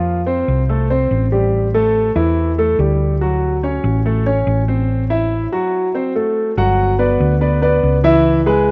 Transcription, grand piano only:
Already playing: F3 F4
0.26 C4 C5
0.69 A3 A4
0.90 C4 C5
1.32 G3 G4
1.74 A3 A4
2.16 E3 E4
2.58 A3 A4
2.79 G3 G4
3.21 F#3 F#4
3.63 C#4 C#5
4.06 A3 A4
4.26 C#4 C#5
4.68 C4 C5
5.10 E4 E5
5.52 F#3 F#4
5.95 C4 C5
6.15 A3 A4
6.58 F#3 F#4 F#5
6.99 B3 B4 D5
7.41 B3 B4 D5
7.62 B3 B4 D5
8.04 E3 E4 E5
8.46 G#3 G#4 B4

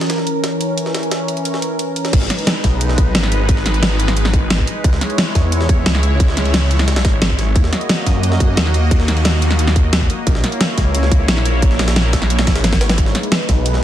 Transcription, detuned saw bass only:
2.13 G#1
2.64 B1
2.98 B1
3.15 G#1
3.66 G#1
4.50 G#1
4.84 C#2
5.35 E2
5.69 E2
5.86 C#2
6.37 C#2
7.22 G#1
7.56 D#2
8.06 F#2
8.40 F#2
8.57 D#2
9.08 D#2
9.93 D#2
10.27 A#1
10.78 C#2
11.11 C#2
11.28 A#1
11.79 A#1
12.64 G#1
12.98 G#1
13.49 B1

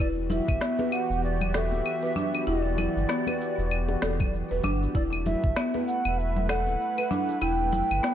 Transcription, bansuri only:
0.00 D5
0.31 E5
0.92 F#5
1.24 D5
1.55 E5
2.48 D5
4.95 D5
5.26 E5
5.87 F#5
6.18 E5
6.49 F#5
7.42 G5

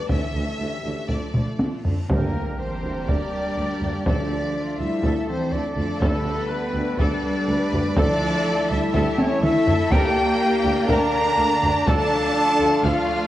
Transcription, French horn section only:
0.10 A4
0.60 G4
1.11 F4
2.10 A#3
2.59 C4
3.10 D4
4.06 D4
4.79 E4
5.28 C4
5.53 D4
6.03 A3
6.52 B3
7.02 D4
7.98 D4
8.70 E4
9.20 C#4
9.43 E4
9.93 G4
10.89 A#4
11.86 A4
12.86 F4

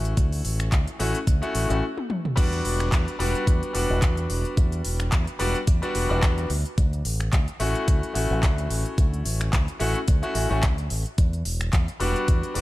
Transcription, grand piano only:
Already playing: A3 C#4 E4 F#4
0.99 A3 C#4 E4 F#4
1.42 A3 C#4 E4 F#4
1.69 A3 C#4 E4 F#4
2.36 G3 B3 D4 F#4
3.19 G3 B3 D4 F#4
3.73 G3 B3 D4 F#4
5.39 G3 B3 D4 F#4
5.82 G3 B3 D4 F#4
6.09 G3 B3 D4 F#4
7.60 A3 C#4 E4 F#4
8.14 A3 C#4 E4 F#4
9.80 A3 C#4 E4 F#4
10.22 A3 C#4 E4 F#4
10.35 A3 C#4 E4 F#4
10.50 A3 C#4 E4 F#4
12.00 G3 B3 D4 F#4
12.54 G3 B3 D4 F#4

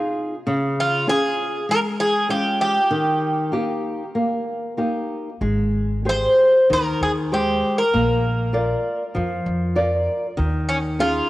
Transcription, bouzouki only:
0.80 F4
1.09 G#4
1.71 A#4
2.00 G#4
2.30 G4
2.61 G4
6.09 C5
6.73 A#4
7.03 G#4
7.34 G4
7.78 A#4
10.69 C#4
11.00 F4

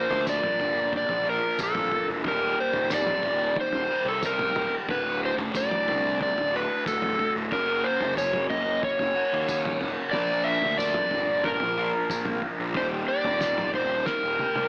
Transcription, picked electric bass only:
0.10 D2
0.60 G1
1.08 A#1
1.59 A#1
2.08 E1
2.25 D#1
2.74 D#1
3.25 D#1
3.73 D#1
4.05 C2
4.54 D#1
4.89 D1
5.37 F#1
5.88 C2
6.36 D1
6.86 D1
7.36 D1
7.52 F#1
8.01 F#1
8.50 F#1
9.00 F#1
9.33 D#2
9.82 D#1
10.14 A#1
10.65 D2
11.13 G1
11.63 A#1
12.10 A#1
12.59 A#1
12.75 D#1
13.24 D#1
13.73 D#1
14.23 D#1
14.55 C2

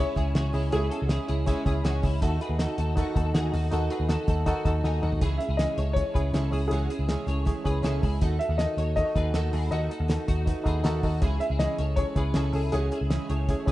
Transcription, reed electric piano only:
Already playing: C#4 E4
0.00 G#4
0.16 C#4 E4 G#4
0.34 C#4 E4 G#4
0.53 C#4 E4 G#4
0.71 C#4 E4 G#4
0.90 C#4 E4 G#4
1.09 C#4 E4 G#4
1.28 C#4 E4 G#4
1.46 C#4 E4 G#4
1.65 C#4 E4 G#4
1.84 C#4 E4 G#4
2.03 C#4 E4 G#4
2.21 D#4 F#4 A4
2.40 D#4 F#4 A4
2.58 D#4 F#4 A4
2.78 D#4 F#4 A4
2.96 D#4 F#4 A4
3.15 D#4 F#4 A4
3.34 D#4 F#4 A4
3.52 D#4 F#4 A4
3.71 D#4 F#4 A4
3.90 D#4 F#4 A4
4.09 D#4 F#4 A4
4.28 D#4 F#4 A4
4.46 D#4 F#4 A4
4.65 D#4 F#4 A4
4.84 D#4 F#4 A4
5.02 D#4 F#4 A4
5.20 C#4 E4 G#4
5.39 C#4 E4 G#4
5.58 C#4 E4 G#4
5.77 C#4 E4 G#4
5.95 C#4 E4 G#4
6.14 C#4 E4 G#4
6.33 C#4 E4 G#4
6.51 C#4 E4 G#4
6.70 C#4 E4 G#4
6.88 C#4 E4 G#4
7.09 C#4 E4 G#4
7.27 C#4 E4 G#4
7.45 C#4 E4 G#4
7.64 C#4 E4 G#4
7.83 C#4 E4 G#4
8.03 C#4 E4 G#4
8.21 D#4 F#4 A4
8.41 F#4 A4
8.59 D#4 F#4 A4
8.77 D#4 F#4 A4
8.96 D#4 F#4 A4
9.15 D#4 F#4 A4
9.34 D#4 F#4 A4
9.52 D#4 F#4 A4
9.71 D#4 F#4 A4
9.89 D#4 F#4 A4
10.09 D#4 F#4 A4
10.26 D#4 F#4 A4
10.46 D#4 F#4 B4
10.64 D#4 F#4 A4
10.84 D#4 F#4 A4
11.03 D#4 F#4 A4
11.21 C#4 E4 G#4
11.40 C#4 E4 G#4
11.60 C#4 E4 G#4
11.79 C#4 E4 G#4
11.97 C#4 E4 G#4
12.16 C#4 E4 G#4
12.35 C#4 E4 G#4
12.54 C#4 E4 G#4
12.73 C#4 E4 G#4
12.91 C#4 E4 G#4
13.10 C#4 E4 G#4
13.29 C#4 E4 G#4
13.49 C#4 E4 G#4
13.66 C#4 E4 G#4

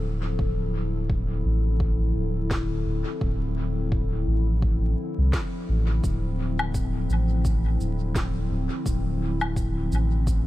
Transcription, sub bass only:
Already playing: D1
0.39 D1
1.45 A1
2.15 D1
2.86 D1
3.21 D1
4.27 A1
5.18 C2
5.69 A1
6.04 D1
7.10 A1
7.80 D1
8.51 D1
8.86 D1
9.92 A1

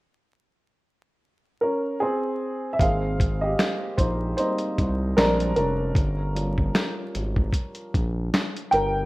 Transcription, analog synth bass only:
2.80 G#1
3.99 A#1
4.79 C2
5.18 A#1
5.57 F1
5.96 G1
7.15 G#1
7.95 A#1
8.73 G1

